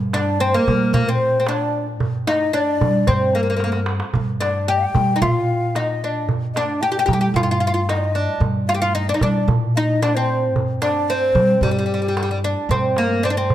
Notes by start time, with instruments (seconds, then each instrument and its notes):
Already playing: upright bass G2
0.13 oud D4, ney D5, darbuka tek
0.40 oud C4, ney C5
0.54 oud A#3, ney A#4
0.68 upright bass G3, darbuka dum
0.93 upright bass A#2, oud A#3, ney A#4, darbuka dum
1.08 oud C4, ney C5
1.21 darbuka ka
1.40 oud C4
1.47 oud D4, ney D5, darbuka tek
1.88 darbuka ka
2.00 upright bass G2, darbuka dum
2.27 oud D#4, ney D#5 F5, darbuka tek
2.41 darbuka ka
2.53 oud D4, ney D5
2.67 darbuka ka
2.81 upright bass G3, darbuka dum
2.95 darbuka ka
3.07 upright bass G2, oud C4, ney C5, darbuka dum
3.20 darbuka ka
3.35 oud A#3, ney A#4
3.43 oud A#3
3.50 oud A#3
3.56 oud A#3, darbuka tek
3.64 oud A#3
3.72 oud A#3, darbuka ka
3.86 darbuka tek
4.00 darbuka ka
4.14 upright bass G2, darbuka dum
4.40 oud D4, ney D5, darbuka tek
4.68 oud G4, ney G5
4.95 upright bass G3, darbuka dum
5.16 oud D#4
5.22 upright bass A#2, oud F4, ney F5, darbuka dum
5.49 darbuka ka
5.75 oud D#4, ney D#5 F5, darbuka tek
6.04 oud D4
6.16 darbuka ka
6.29 upright bass G2, darbuka dum
6.54 oud D4, ney D#5, darbuka tek
6.59 ney D5
6.81 oud G4, ney G5
6.92 oud G4
6.99 oud G4
7.06 upright bass G3, oud G4, ney A#5, darbuka dum
7.13 oud G4, ney G5
7.21 oud G4
7.34 upright bass G2, oud F4, ney F5, darbuka dum
7.43 oud F4
7.51 oud F4
7.60 oud F4, darbuka ka
7.67 oud F4
7.74 oud F4
7.89 oud D#4, ney D#5, darbuka tek
7.97 ney D5
8.04 ney D#5
8.15 oud D4
8.29 darbuka ka
8.40 upright bass G2, darbuka dum
8.69 oud F4, ney F5
8.75 oud G4
8.82 oud F4
8.95 oud D#4, ney D#5
9.08 oud D4, ney D5
9.14 oud D#4
9.21 upright bass G3, oud D4, ney D5, darbuka dum
9.48 upright bass A#2, darbuka dum
9.75 oud D#4, ney D#5 F5, darbuka ka
10.02 oud D4, ney D5, darbuka tek
10.15 oud C4, ney C5
10.43 darbuka ka
10.54 upright bass G2, darbuka dum
10.82 oud D4, ney D5, darbuka tek
10.96 darbuka ka
11.09 oud C4, ney C5 D5
11.22 darbuka ka
11.35 upright bass G3, darbuka dum
11.50 darbuka ka
11.61 upright bass G2, oud G3, ney G4, darbuka dum
11.71 oud G3
11.77 oud G3, darbuka ka
11.86 oud G3
11.94 oud G3
12.02 oud G3
12.08 oud G3
12.17 oud G3, darbuka tek
12.23 oud G3
12.31 oud G3
12.44 oud D4, darbuka ka
12.58 darbuka ka
12.69 upright bass G2, oud C4, darbuka dum
12.96 oud A#3, darbuka tek
13.23 oud C4 D4
13.30 oud D4
13.37 oud C4
13.50 darbuka dum